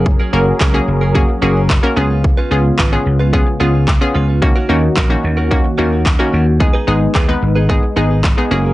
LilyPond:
<<
  \new Staff \with { instrumentName = "Clean electric guitar" } { \time 4/4 \key aes \dorian \tempo 4 = 110 r16 <des' aes' bes'>16 <des' aes' bes'>16 r16 <des' aes' bes'>16 r8 <des' aes' bes'>16 r8 <des' aes' bes'>16 <des' aes' bes'>16 r8 <des' f' ces''>16 <des' f' ces''>16 | r16 <des' f' ces''>16 <des' f' ces''>16 r16 <des' f' ces''>16 r8 <des' f' ces''>16 r8 <des' f' ces''>16 <des' f' ces''>16 r8 <des' f' ces''>16 <des' f' ces''>16 | r16 <des' ges' bes'>16 <des' ges' bes'>16 r16 <des' ges' bes'>16 r8 <des' ges' bes'>16 r8 <des' ges' bes'>16 <des' ges' bes'>16 r16 <des' ges' bes'>16 <des' ges' bes'>16 r16 | r16 <ees' aes' ces''>16 <ees' aes' ces''>16 r16 <ees' aes' ces''>16 r8 <ees' aes' ces''>16 r8 <ees' aes' ces''>16 <ees' aes' ces''>16 r8 <des' aes' bes'>16 <des' aes' bes'>16 | }
  \new Staff \with { instrumentName = "Synth pluck" } { \time 4/4 \key aes \dorian <bes des' ges' aes'>16 r16 <bes des' ges' bes'>8 r16 <bes des' ges' aes'>8 r16 <bes des' ges' aes'>16 r16 <bes des' ges' aes'>8 r16 <bes des' ges' bes'>16 <ces' des' f' aes'>8~ | <ces' des' f' aes'>16 r16 <ces' des' f' aes'>8 r16 <ces' des' f' aes'>8 r16 <ces' des' f' aes'>16 r16 <ces' des' f' aes'>8 r16 <ces' des' f' aes'>8 r16 | <bes des' ees' ges'>16 r16 <bes des' ees' ges'>8 r16 <bes des' ees' ges'>8 r16 <bes des' ees' ges'>16 r16 <bes des' ees' ges'>8 r16 <bes des' ees' ges'>8 r16 | <aes ces' ees' aes'>16 r16 <aes ces' ees' aes'>8 r16 <aes ces' ees' ces''>8 r16 <aes ces' ees' aes'>16 r16 <aes ces' ees' aes'>8 r16 <aes ces' ees' aes'>16 <bes des' ges' aes'>8 | }
  \new Staff \with { instrumentName = "Analog synth pad" } { \time 4/4 \key aes \dorian <ges des' aes' bes'>2.~ <ges des' aes' bes'>8 <des aes ces' f'>8~ | <des aes ces' f'>1 | <ees bes des' ges'>1 | <aes ces' ees'>2.~ <aes ces' ees'>8 <ges des' aes' bes'>8 | }
  \new Staff \with { instrumentName = "Slap bass" } { \clef bass \time 4/4 \key aes \dorian ges,,8 ges,,8 des,8 ges,,4 ges,,4 des,8~ | des,8 des,8 aes,,8 des,4 des,4 des,8~ | des,8 ees,8 bes,,8 ees,4 ees,4 ees,8~ | ees,8 aes,,8 ees,8 aes,,4 aes,,4 ges,,8 | }
  \new DrumStaff \with { instrumentName = "Drums" } \drummode { \time 4/4 bd4 <hc bd>4 bd4 <hc bd>4 | bd4 <hc bd>4 bd4 <hc bd>4 | bd4 <hc bd>4 bd4 <hc bd>4 | bd4 <hc bd>4 bd4 <hc bd>4 | }
>>